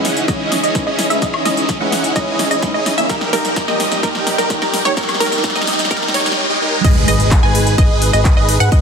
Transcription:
Already playing: E3 C#4 D#4 E4 G#4 D#5 F#5, riser
0.05 snare, open hi-hat
0.17 closed hi-hat
0.28 E3 G#3 C#4 D#4 E4 G#4 D#5, kick, snare, closed hi-hat
0.52 snare, open hi-hat
0.63 C#4 D#4 E4 G#4 D#5, closed hi-hat
0.74 E3 G#3 C#4 D#4, kick, snare, closed hi-hat
0.87 C#4 D#4 E4 G#4 D#5
0.99 snare, open hi-hat
1.10 E3 G#3 C#4 D#4 E4 G#4 E5, closed hi-hat
1.22 C#4 D#4 E4 G#4 D#5, kick, snare, closed hi-hat
1.34 high woodblock
1.45 E3 G#3 C#4 D#4 E4 G#4 D#5, snare, open hi-hat
1.57 closed hi-hat
1.69 kick, snare, closed hi-hat
1.80 E3 G#3 C#4 D#4 E4 G#4 F#5
1.92 snare, open hi-hat
2.04 closed hi-hat
2.15 E3 G#3 C#4 D#4 E4 G#4 D#5, kick, snare, closed hi-hat
2.39 snare, open hi-hat
2.51 C#4 D#4 E4 G#4 D#5, closed hi-hat
2.62 E3 G#3 C#4 D#4, kick, snare, closed hi-hat
2.74 C#4 D#4 E4 G#4 D#5
2.86 snare, open hi-hat
2.97 D#3 G3 A#3 C#4 D#4 E4 G#4 E5, closed hi-hat
3.09 D#2 A#2 G3 D#4 G4 A#4, kick, snare, closed hi-hat
3.21 snare
3.32 D#3 G3 A#3 D#4 G4 A#4, snare, open hi-hat
3.45 snare, closed hi-hat
3.56 kick, snare, closed hi-hat
3.67 D#3 G3 A#3 D#4 G4 D#5, snare
3.80 snare, open hi-hat
3.92 snare, closed hi-hat
4.03 D#3 G3 A#3 D#4 G4 A#4, kick, snare, closed hi-hat
4.15 snare
4.27 snare, open hi-hat
4.38 D#4 G4 A#4, snare, closed hi-hat
4.49 D#3 G3 A#3 D#4, kick, snare, closed hi-hat
4.62 D#4 G4 A#4, snare
4.74 snare, open hi-hat
4.85 D#3 G3 A#3 D#4 G4 C#5, snare, closed hi-hat
4.97 D#4 G4 A#4, kick, snare, closed hi-hat
5.03 snare
5.09 snare, closed hi-hat, high woodblock
5.15 snare
5.20 D#3 G3 A#3 D#4 G4 A#4, snare, open hi-hat
5.26 snare
5.32 snare, closed hi-hat
5.38 snare
5.44 kick, snare, closed hi-hat
5.50 snare
5.55 D#3 G3 A#3 D#4 G4 D#5, snare, closed hi-hat
5.61 snare
5.67 snare, open hi-hat
5.73 snare
5.79 snare, closed hi-hat
5.85 snare
5.90 D#3 G3 A#3 D#4 G4 A#4, kick, snare, closed hi-hat
5.97 snare
6.03 snare
6.08 snare
6.14 D#4 G4 C#5, snare, open hi-hat
6.20 snare
6.26 snare, closed hi-hat
6.32 snare
6.49 D#4 G4 D#5
6.61 D#4 G4 A#4
6.84 G#1 G#3 D#4 G#4 B4 D#5, kick, closed hi-hat, ride, crash, impact
7.08 G#1 G#4 B4 D#5, open hi-hat, ride
7.20 closed hi-hat
7.31 kick, clap, closed hi-hat, ride
7.43 G#1 G#4 B4 G#5
7.55 open hi-hat, ride
7.67 closed hi-hat
7.78 G#1 G#4 B4 D#5, kick, closed hi-hat, ride
8.02 open hi-hat, ride
8.13 G#1 G#4 B4 D#5, closed hi-hat
8.25 kick, clap, closed hi-hat, ride
8.37 G#1 G#4 B4 D#5
8.49 open hi-hat, ride
8.60 G#1 G#4 B4 F#5, closed hi-hat
8.72 G#4 B4 D#5, kick, closed hi-hat, ride

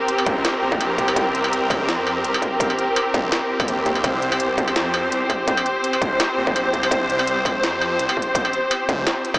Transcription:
Already playing: C4 G4 A#4
0.08 closed hi-hat
0.18 struck metal
0.26 C#2, kick, closed hi-hat
0.45 snare, closed hi-hat, struck metal
0.62 A#1
0.72 kick
0.81 closed hi-hat, struck metal
0.98 C2, kick, closed hi-hat
1.08 struck metal
1.16 C2, kick, closed hi-hat
1.35 closed hi-hat
1.44 struck metal
1.53 closed hi-hat
1.70 C#2, kick, closed hi-hat, struck metal
1.88 F2, snare, closed hi-hat
2.07 struck metal
2.24 C2, closed hi-hat
2.34 struck metal
2.42 kick, closed hi-hat
2.60 kick, closed hi-hat
2.70 struck metal
2.79 closed hi-hat
2.96 closed hi-hat, struck metal
3.14 C#2, kick, closed hi-hat
3.32 snare, closed hi-hat, struck metal
3.60 kick, struck metal
3.68 D#2, closed hi-hat
3.86 kick, closed hi-hat
3.95 struck metal
4.04 C2 C5, kick, closed hi-hat, struck metal
4.22 closed hi-hat
4.32 struck metal
4.40 closed hi-hat
4.58 C#2, kick, closed hi-hat
4.68 struck metal
4.76 F2, snare, closed hi-hat
4.94 struck metal
5.12 C2, closed hi-hat
5.30 kick, closed hi-hat, struck metal
5.48 kick, closed hi-hat
5.57 struck metal
5.66 closed hi-hat
5.84 closed hi-hat
5.93 struck metal
6.02 C#2, kick, closed hi-hat
6.20 snare, closed hi-hat, struck metal
6.38 A#1
6.47 kick
6.56 closed hi-hat, struck metal
6.73 C2, kick, closed hi-hat
6.83 struck metal
6.91 C2, kick, closed hi-hat
7.10 closed hi-hat
7.19 struck metal
7.27 closed hi-hat
7.45 C#2, kick, closed hi-hat, struck metal
7.63 F2, snare, closed hi-hat
7.82 struck metal
7.99 C2, closed hi-hat
8.09 struck metal
8.17 kick
8.22 closed hi-hat
8.35 kick, closed hi-hat
8.45 struck metal
8.53 closed hi-hat
8.71 closed hi-hat, struck metal
8.89 C#2, kick, closed hi-hat
9.07 snare, closed hi-hat, struck metal
9.25 closed hi-hat
9.34 kick, struck metal

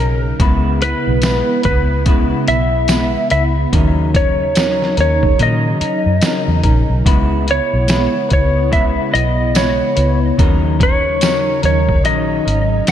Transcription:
Already playing: C#3 F#3 D#4 A#4
0.00 B1 C#4 D#4
0.39 C#2 C#3 G#3 B3 E4 B4, kick, closed hi-hat
0.81 B3 E4 B4, closed hi-hat
1.07 B1
1.22 G#3 B3 E4 B4, snare, closed hi-hat, tambourine
1.63 C#2 E4 B4, kick, closed hi-hat
1.68 B3
2.06 C#3 G#3 B3 E4 B4, kick, closed hi-hat
2.48 B1 B3 E4 E5, closed hi-hat
2.88 G#3 B3 E4 B4, snare, closed hi-hat, tambourine
3.30 C#2 E4 B4 E5, closed hi-hat
3.35 B3
3.72 D#2 D#3 F#3 C#4 D#4 A#4, kick, closed hi-hat
4.14 C#4 D#4 A#4 C#5, kick, closed hi-hat
4.55 F#3 C#4 D#4 A#4, snare, closed hi-hat, tambourine
4.82 snare
4.97 D#2 C#4 D#4 A#4 C#5, closed hi-hat
5.23 kick
5.39 A#2 D#3 F#3 C#4 D#4 A#4 D#5, closed hi-hat
5.80 C#4 D#4 A#4, muted fingered electric bass stroke, closed hi-hat
6.06 F#2
6.22 F#3 C#4, snare, closed hi-hat, tambourine
6.26 D#4 A#4
6.48 E2
6.63 A#1 C#4 D#4 A#4, kick, closed hi-hat
6.90 B1
7.05 C#2 C#3 G#3 B3 E4 B4, kick, closed hi-hat
7.47 B3 E4 B4, closed hi-hat
7.51 C#5
7.74 B1
7.87 G#3 B3 E4 B4, snare, closed hi-hat, tambourine
8.29 C#2 B3 E4 B4, kick, closed hi-hat
8.33 C#5
8.70 C#3 G#3 B3 E4 B4 E5, kick, closed hi-hat
9.11 B1 B3 E4 B4 D#5, closed hi-hat
9.54 G#3 B3 E4 B4 C#5, snare, closed hi-hat, tambourine
9.96 C#2 B3 E4 B4, closed hi-hat
10.37 D#2 D#3 F#3 C#4 D#4 A#4, kick, closed hi-hat
10.79 C#4 D#4 A#4 C#5, kick, closed hi-hat
11.21 F#3 C#4 D#4 A#4, snare, closed hi-hat, tambourine
11.62 D#2 C#4 D#4 A#4 C#5, closed hi-hat
11.89 kick
12.04 A#1 D#3 F#3 C#4 D#4 A#4 D#5, closed hi-hat
12.45 G#1 C#4 D#4 A#4, closed hi-hat
12.87 F#3 C#4, snare, closed hi-hat, tambourine

